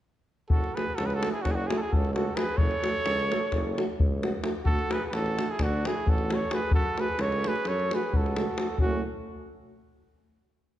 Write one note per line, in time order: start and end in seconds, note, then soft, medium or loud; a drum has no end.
0.50 0.65 F#1 medium
0.50 0.76 F#4 medium
0.50 0.76 A4 medium
0.50 davul low medium
0.64 davul high soft
0.75 0.85 A3 soft
0.75 0.85 F#4 soft
0.75 0.97 G#4 medium
0.75 0.97 B4 medium
0.75 davul high medium
0.95 1.24 C#2 medium
0.95 1.08 F#4 medium
0.95 1.08 A4 medium
0.95 davul high medium
1.06 1.15 G#4 soft
1.06 1.16 B4 medium
1.06 davul high soft
1.14 1.30 F#4 medium
1.14 1.31 A4 medium
1.22 1.31 A3 medium
1.22 1.32 F#4 soft
1.22 davul high medium
1.30 1.43 E4 medium
1.30 1.44 G#4 medium
1.42 1.71 F#1 medium
1.42 1.51 C#4 medium
1.42 1.53 F#4 medium
1.42 davul high medium
1.42 davul low medium
1.50 1.56 E4 medium
1.50 1.57 G#4 medium
1.55 1.68 D4 medium
1.55 1.69 F#4 medium
1.67 1.79 A3 medium
1.67 1.76 E4 soft
1.67 1.79 F#4 medium
1.67 1.79 G#4 medium
1.67 davul high medium
1.75 1.89 E4 medium
1.75 1.80 F#4 medium
1.75 1.92 G#4 medium
1.75 1.80 A4 medium
1.87 2.12 F#4 medium
1.87 2.14 A4 medium
1.93 2.29 C#2 medium
1.93 davul low medium
2.05 davul high soft
2.12 2.25 A3 medium
2.12 2.36 F#4 medium
2.12 2.24 F#4 medium
2.12 2.38 A4 medium
2.12 davul high medium
2.35 2.44 A3 medium
2.35 2.45 F#4 medium
2.35 2.56 G#4 medium
2.35 2.59 B4 medium
2.35 davul high medium
2.55 2.72 F#1 medium
2.55 3.98 A4 medium
2.55 3.99 C#5 loud
2.55 davul low medium
2.71 davul high soft
2.83 2.92 A3 medium
2.83 2.92 F#4 medium
2.83 davul high medium
3.05 3.31 C#2 loud
3.05 davul high medium
3.19 davul high soft
3.30 3.39 A3 medium
3.30 3.39 F#4 soft
3.30 davul high medium
3.52 3.78 F#1 loud
3.52 davul high medium
3.52 davul low medium
3.77 3.86 A3 medium
3.77 3.87 F#4 medium
3.77 davul high medium
4.00 4.35 C#2 medium
4.00 davul low medium
4.21 4.30 A3 medium
4.21 4.31 F#4 medium
4.21 davul high medium
4.42 4.51 A3 medium
4.42 4.52 F#4 medium
4.42 davul high medium
4.64 4.79 D2 medium
4.64 4.93 F#4 medium
4.64 4.94 A4 medium
4.64 davul low medium
4.79 davul high soft
4.89 4.98 A3 medium
4.89 4.99 F#4 medium
4.89 5.04 G#4 medium
4.89 5.07 B4 medium
4.89 davul high medium
5.04 5.14 G#4 medium
5.04 5.15 B4 medium
5.12 5.38 A1 medium
5.12 5.51 F#4 medium
5.12 5.53 A4 medium
5.12 davul high medium
5.26 davul high soft
5.37 5.45 A3 medium
5.37 5.46 F#4 soft
5.37 davul high medium
5.50 5.61 E4 medium
5.50 5.64 G#4 medium
5.59 5.84 D2 medium
5.59 5.87 D4 medium
5.59 davul high medium
5.59 davul low medium
5.63 5.89 F#4 medium
5.84 5.93 A3 medium
5.84 6.09 E4 medium
5.84 5.94 F#4 medium
5.84 6.11 G#4 medium
5.84 davul high medium
6.06 6.42 A1 medium
6.06 6.33 F#4 medium
6.06 davul low medium
6.10 6.36 A4 medium
6.18 davul high soft
6.29 6.38 A3 soft
6.29 6.39 F#4 medium
6.29 6.54 A4 medium
6.29 davul high medium
6.34 6.56 C#5 medium
6.51 6.59 A3 medium
6.51 6.60 F#4 medium
6.51 6.72 G#4 medium
6.51 6.73 B4 medium
6.51 davul high medium
6.71 6.86 F#2 medium
6.71 7.01 F#4 medium
6.71 7.02 A4 medium
6.71 davul low medium
6.97 7.06 A3 medium
6.97 7.07 F#4 medium
6.97 7.22 G#4 medium
6.97 7.23 B4 medium
6.97 davul high medium
7.08 davul high soft
7.19 7.45 C#2 loud
7.19 7.47 A4 medium
7.19 7.49 C#5 medium
7.19 davul high medium
7.32 davul high soft
7.44 7.53 A3 medium
7.44 7.55 F#4 soft
7.44 7.69 G#4 medium
7.44 7.70 B4 medium
7.44 davul high medium
7.56 davul high soft
7.65 7.92 F#2 medium
7.65 7.94 A4 medium
7.65 7.96 C#5 medium
7.65 davul high medium
7.80 davul high soft
7.91 8.00 A3 medium
7.91 8.02 F#4 medium
7.91 8.15 G#4 medium
7.91 8.19 B4 medium
7.91 davul high medium
8.03 davul high soft
8.12 8.49 C#2 medium
8.12 8.77 F#4 medium
8.12 davul low medium
8.17 8.80 A4 medium
8.26 davul high soft
8.36 8.45 A3 soft
8.36 8.46 F#4 medium
8.36 davul high medium
8.57 8.66 A3 soft
8.57 8.66 F#4 soft
8.57 davul high medium
8.68 davul high soft
8.78 9.02 F#1 medium
8.78 9.02 A3 medium
8.78 9.02 C#4 medium
8.78 9.03 F#4 medium
8.78 davul low medium